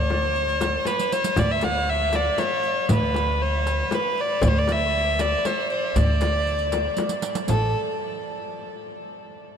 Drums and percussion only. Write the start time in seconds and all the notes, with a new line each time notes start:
0.10 darbuka tek, frame drum
0.36 riq
0.48 riq, darbuka ka
0.61 riq, darbuka tek, frame drum
0.85 riq, darbuka tek, frame drum
0.99 riq
1.12 riq
1.24 riq
1.36 riq, frame drum, darbuka dum
1.61 riq, darbuka tek, frame drum
2.13 riq, darbuka tek, frame drum
2.38 riq, darbuka tek, frame drum
2.63 riq, darbuka ka
2.89 riq, frame drum, darbuka dum
3.14 riq, darbuka tek, frame drum
3.67 riq, darbuka tek
3.91 riq, darbuka tek, frame drum
4.18 riq, darbuka ka
4.42 riq, frame drum, darbuka dum
4.68 riq, darbuka tek, frame drum
5.19 riq, darbuka tek, frame drum
5.45 riq, darbuka tek, frame drum
5.70 riq, darbuka ka
5.96 riq, frame drum, darbuka dum
6.21 riq, darbuka tek, frame drum
6.47 riq
6.59 riq, darbuka ka
6.72 riq, darbuka tek, frame drum
6.97 riq, darbuka tek, frame drum
7.09 riq, darbuka ka
7.22 riq, darbuka tek
7.35 riq, darbuka ka
7.48 riq, darbuka dum, frame drum